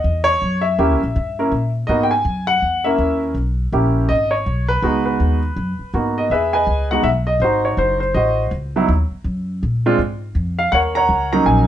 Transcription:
Already playing: grand piano D#5
0.04 upright bass E2
0.24 grand piano C#5
0.42 upright bass F#2
0.61 grand piano E5
0.78 upright bass D#2, grand piano A#3 C#4 E4 G4
0.91 upright bass C#2
1.03 upright bass A#1
1.16 upright bass G2
1.39 grand piano A#3 C#4 E4 A#4
1.52 upright bass A#2
1.87 upright bass G#2, grand piano A#3 B3 D#4 F#4 D#5
2.03 grand piano G5
2.11 grand piano G#5
2.25 upright bass F#2
2.47 grand piano F#5
2.62 upright bass E2
2.84 grand piano A#3 C#4 E4 A#4 E5
2.98 upright bass D#2
3.35 upright bass B1
3.72 upright bass A#1, grand piano A#3 C#4 E4 G4
4.09 upright bass G#1, grand piano D#5
4.31 grand piano C#5
4.46 upright bass B1
4.68 grand piano B4
4.82 upright bass C#2, grand piano G#3 B3 D#4 F#4
5.05 grand piano B4
5.20 upright bass D#2
5.56 upright bass F#2
5.79 muted upright bass stroke
5.94 upright bass G#2, grand piano A#3 B3 D#4 F#4
6.18 grand piano D#5
6.30 upright bass E2, grand piano G#4 B4 E5
6.53 grand piano B4 D#5 G#5
6.67 upright bass C#2
6.91 grand piano G#3 B3 D#4 F#4 F#5
7.03 upright bass B1, grand piano E5
7.27 grand piano D#5
7.40 upright bass G#1, grand piano D#4 F#4 C5
7.65 grand piano C#5
7.77 upright bass F#1, grand piano C5
8.00 grand piano C5
8.14 upright bass A1, grand piano F#4 C5 D#5
8.51 upright bass C#2
8.76 grand piano F#3 B3 D#4 E4
8.88 upright bass D#2
9.11 muted upright bass stroke
9.24 upright bass F#2
9.63 upright bass A#2
9.86 grand piano G#3 C4 D4 F4
9.98 upright bass G#2
10.35 upright bass F2
10.59 grand piano F5
10.72 upright bass D#2, grand piano A#4 C#5 F#5
10.95 grand piano C#5 F#5 A#5
11.09 upright bass C#2
11.33 grand piano F#3 A#3 C#4 D#4 A#5
11.46 upright bass A#1, grand piano G#5

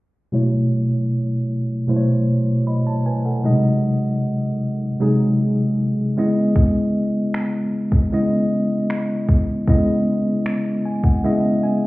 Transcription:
0.32 tine electric piano B2 F#3 A3 E4 C#5
1.88 tine electric piano B2 F#3 A3 E4 C5
1.96 tine electric piano C#5
2.67 tine electric piano D#5 B5
2.87 tine electric piano C#5 A5
3.06 tine electric piano B4 G#5
3.25 tine electric piano A4 F#5
3.43 tine electric piano B2 F#3 G#3 D#4 D#5
3.50 tine electric piano C3
5.00 tine electric piano C3 F#3 G#3 D#4 G#4
6.17 tine electric piano C#3 G#3 B3 E4 D#5
6.56 kick
7.34 finger snap
7.92 kick
8.12 tine electric piano C#3 G#3 B3 E4 D#5
8.90 finger snap
9.29 kick
9.67 tine electric piano C#3 G#3 B3 E4 D#5, kick
10.46 finger snap
10.85 tine electric piano G#5
11.04 tine electric piano F#5, kick
11.23 tine electric piano C#3 G#3 B3 E4 D#5 E5
11.63 tine electric piano G#5

